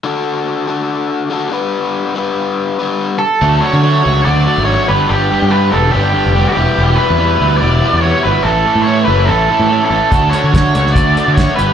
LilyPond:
<<
  \new Staff \with { instrumentName = "Lead electric guitar" } { \time 4/4 \key d \major \tempo 4 = 143 r1 | r2. r8 a'8~ | a'8 cis''4. d''4 cis''8 b'8 | g'4 b'8 a'8 g'4~ \tuplet 3/2 { g'8 fis'16 g'8.~ } |
g'8 b'4. d''4 cis''8 b'8 | a'4 cis''8 b'8 a'4. a'8~ | a'8 cis''4. d''4 cis''8 b'8 | }
  \new Staff \with { instrumentName = "Distorted electric guitar" } { \time 4/4 \key d \major r1 | r1 | <d a d' fis'>8 <d a d' fis'>8 <d a d' fis'>8 <d a d' fis'>8 <d a d' fis'>8 <d a d' fis'>8 <d a d' fis'>8 <g, d g b d' g'>8 | <g, d g b d' g'>8 <g, d g b d' g'>8 <g, d g b d' g'>8 <g, d g b d' g'>8 <g, d g b d' g'>8 <g, d g b d' g'>8 <g, d g b d' g'>8 <e, b, e g b e'>8 |
<e, b, e g b e'>8 <e, b, e g b e'>8 <e, b, e g b e'>8 <e, b, e g b e'>8 <e, b, e g b e'>8 <e, b, e g b e'>8 <e, b, e g b e'>8 <e, b, e g b e'>8 | <a, e a cis' e'>8 <a, e a cis' e'>8 <a, e a cis' e'>8 <a, e a cis' e'>8 <a, e a cis' e'>8 <a, e a cis' e'>8 <a, e a cis' e'>8 <a, e a cis' e'>8 | <d a d' fis'>8 <d a d' fis'>8 <d a d' fis'>8 <d a d' fis'>8 <d a d' fis'>8 <d a d' fis'>8 <d a d' fis'>8 <g, d g b d' g'>8 | }
  \new Staff \with { instrumentName = "Overdriven electric guitar" } { \time 4/4 \key d \major <d d' fis' a'>4. <d d' fis' a'>4. <d d' fis' a'>8 <g b d' b'>8~ | <g b d' b'>4 <g b d' b'>4. <g b d' b'>4 r8 | <d fis a d' fis'>8 <d fis a d' fis'>8 <d fis a d' fis'>8 <d fis a d' fis'>8 <d fis a d' fis'>8 <d fis a d' fis'>8 <d fis a d' fis'>8 <g, d g b d' g'>8 | <g, d g b d' g'>8 <g, d g b d' g'>8 <g, d g b d' g'>8 <g, d g b d' g'>8 <g, d g b d' g'>8 <g, d g b d' g'>8 <g, d g b d' g'>8 <e, b, e g b e'>8 |
<e, b, e g b e'>8 <e, b, e g b e'>8 <e, b, e g b e'>8 <e, b, e g b e'>8 <e, b, e g b e'>8 <e, b, e g b e'>8 <e, b, e g b e'>8 <e, b, e g b e'>8 | <a, e a cis' e'>8 <a, e a cis' e'>8 <a, e a cis' e'>8 <a, e a cis' e'>8 <a, e a cis' e'>8 <a, e a cis' e'>8 <a, e a cis' e'>8 <a, e a cis' e'>8 | <d a d' fis'>8 <d a d' fis'>8 <d a d' fis'>8 <d a d' fis'>8 <d a d' fis'>8 <d a d' fis'>8 <d a d' fis'>8 <g, d g b d' g'>8 | }
  \new Staff \with { instrumentName = "Fingered electric bass" } { \clef bass \time 4/4 \key d \major r1 | r1 | d,8 r16 d8. cis,8 d,8 r16 gis,,8 r16 g,,16 r16 | g,,8 r16 g,8. e,,8 g,,8 r16 f,,8 r16 e,,16 r16 |
e,,8 r16 e,8. d,8 e,,8 r16 e,8 r16 g,,16 r16 | a,,8 r16 a,8. fis,,8 a,,8 r16 a,8 r16 a,,16 r16 | d,8 r16 d8. cis,8 d,8 r16 d8 r16 g,,16 r16 | }
  \new DrumStaff \with { instrumentName = "Drums" } \drummode { \time 4/4 r4 r4 r4 r4 | r4 r4 r4 r4 | r4 r4 r4 r4 | r4 r4 r4 r4 |
r4 r4 r4 r4 | r4 r4 r4 r4 | <hh bd>8 hh8 <hh bd sn>8 hh16 sn16 <hh bd>8 hh8 <hh bd sn>8 hh8 | }
>>